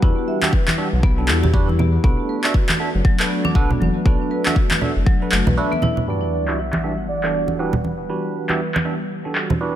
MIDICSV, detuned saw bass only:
0, 0, Header, 1, 2, 480
1, 0, Start_track
1, 0, Key_signature, 1, "minor"
1, 0, Tempo, 504202
1, 25, Time_signature, 4, 2, 24, 8
1, 9287, End_track
2, 0, Start_track
2, 0, Title_t, "Detuned saw bass"
2, 0, Program_c, 0, 39
2, 24, Note_on_c, 0, 40, 97
2, 111, Note_off_c, 0, 40, 0
2, 882, Note_on_c, 0, 35, 97
2, 1223, Note_on_c, 0, 40, 90
2, 1237, Note_off_c, 0, 35, 0
2, 1883, Note_off_c, 0, 40, 0
2, 1940, Note_on_c, 0, 35, 99
2, 2029, Note_off_c, 0, 35, 0
2, 2804, Note_on_c, 0, 30, 101
2, 2866, Note_off_c, 0, 30, 0
2, 3380, Note_on_c, 0, 35, 98
2, 3546, Note_off_c, 0, 35, 0
2, 3626, Note_on_c, 0, 30, 86
2, 3712, Note_off_c, 0, 30, 0
2, 3862, Note_on_c, 0, 35, 98
2, 3950, Note_off_c, 0, 35, 0
2, 4722, Note_on_c, 0, 30, 98
2, 4785, Note_off_c, 0, 30, 0
2, 5064, Note_on_c, 0, 30, 99
2, 5151, Note_off_c, 0, 30, 0
2, 5203, Note_on_c, 0, 35, 84
2, 5304, Note_off_c, 0, 35, 0
2, 9287, End_track
0, 0, End_of_file